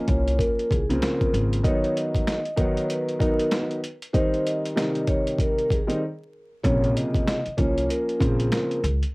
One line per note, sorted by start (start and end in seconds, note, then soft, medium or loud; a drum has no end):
0.00 0.79 F3 medium
0.00 0.79 A#3 medium
0.00 0.79 C#4 medium
0.07 0.36 C2 loud
0.07 0.36 C#5 medium
0.07 kick medium
0.07 closed hi-hat medium
0.28 closed hi-hat medium
0.38 0.67 A#4 medium
0.38 kick medium
0.38 closed hi-hat medium
0.59 closed hi-hat soft
0.70 0.99 C2 medium
0.70 0.98 G#4 medium
0.70 kick medium
0.70 closed hi-hat medium
0.89 1.59 C#3 loud
0.89 1.59 F3 medium
0.89 1.60 A#3 medium
0.89 1.60 C4 loud
0.89 closed hi-hat medium
1.02 1.30 A#4 medium
1.02 snare loud
1.02 snare medium
1.02 closed hi-hat medium
1.21 kick loud
1.21 closed hi-hat soft
1.34 1.62 G#1 medium
1.34 closed hi-hat medium
1.53 closed hi-hat medium
1.63 2.37 D#3 medium
1.63 2.38 F#3 medium
1.63 2.38 B3 medium
1.63 2.38 D#4 loud
1.63 1.93 C#5 loud
1.63 kick loud
1.63 closed hi-hat loud
1.84 closed hi-hat soft
1.96 2.24 D#5 medium
1.96 closed hi-hat medium
2.15 kick medium
2.15 closed hi-hat medium
2.27 2.55 D#5 medium
2.27 snare loud
2.27 snare medium
2.27 closed hi-hat medium
2.45 closed hi-hat soft
2.56 3.16 D#3 loud
2.56 3.16 F#3 medium
2.56 3.16 B3 medium
2.56 3.16 D#4 loud
2.56 2.86 C#5 medium
2.56 kick medium
2.56 closed hi-hat medium
2.77 closed hi-hat medium
2.89 3.17 B4 medium
2.89 closed hi-hat loud
3.09 closed hi-hat soft
3.19 3.78 D#3 medium
3.19 3.78 F#3 medium
3.19 3.79 B3 medium
3.19 3.79 D#4 loud
3.19 3.49 A#4 medium
3.19 kick medium
3.19 closed hi-hat medium
3.40 closed hi-hat medium
3.51 3.80 B4 medium
3.51 snare loud
3.51 snare medium
3.51 closed hi-hat medium
3.71 closed hi-hat soft
3.84 closed hi-hat medium
4.02 closed hi-hat medium
4.13 4.72 D#3 medium
4.13 4.72 G3 medium
4.13 4.72 C4 medium
4.13 4.73 D#4 loud
4.13 4.42 C5 loud
4.13 kick loud
4.13 closed hi-hat loud
4.34 closed hi-hat soft
4.46 4.74 D#5 medium
4.46 closed hi-hat medium
4.66 closed hi-hat medium
4.76 5.79 C3 medium
4.76 5.78 D#3 loud
4.76 5.78 G3 medium
4.76 5.79 D#4 loud
4.76 5.05 D#5 medium
4.76 snare loud
4.76 snare medium
4.76 closed hi-hat medium
4.95 closed hi-hat soft
5.07 5.36 C#5 medium
5.07 kick medium
5.07 closed hi-hat medium
5.27 closed hi-hat medium
5.39 5.67 A#4 medium
5.39 kick medium
5.39 closed hi-hat loud
5.59 closed hi-hat soft
5.70 5.99 G#4 medium
5.70 kick medium
5.70 closed hi-hat medium
5.87 6.01 D#3 loud
5.87 6.01 G3 medium
5.87 6.01 C4 medium
5.87 6.01 D#4 loud
5.87 closed hi-hat medium
6.64 6.93 A#1 loud
6.64 7.38 C3 loud
6.64 7.38 C#3 loud
6.64 7.38 F3 medium
6.64 7.38 A#3 medium
6.64 6.92 C#5 medium
6.64 kick loud
6.64 closed hi-hat loud
6.84 closed hi-hat soft
6.96 7.24 D#5 medium
6.96 closed hi-hat medium
7.15 kick medium
7.15 closed hi-hat medium
7.27 7.55 D#5 medium
7.27 snare loud
7.27 snare medium
7.27 closed hi-hat medium
7.46 muted upright bass stroke soft
7.46 closed hi-hat soft
7.57 7.86 C2 medium
7.57 8.16 F3 medium
7.57 8.16 A#3 medium
7.57 8.16 C#4 loud
7.57 7.86 C#5 medium
7.57 kick loud
7.57 closed hi-hat medium
7.78 closed hi-hat medium
7.89 8.17 A#4 medium
7.89 closed hi-hat loud
8.09 closed hi-hat soft
8.19 8.49 A#1 medium
8.19 8.79 C#3 medium
8.19 8.79 F3 medium
8.19 8.79 A#3 medium
8.19 8.79 C4 medium
8.19 8.48 G#4 medium
8.19 kick medium
8.19 closed hi-hat medium
8.40 closed hi-hat medium
8.52 8.80 A#4 medium
8.52 snare loud
8.52 snare medium
8.52 closed hi-hat medium
8.71 closed hi-hat soft
8.84 9.00 C#2 loud
8.84 closed hi-hat medium
9.03 closed hi-hat soft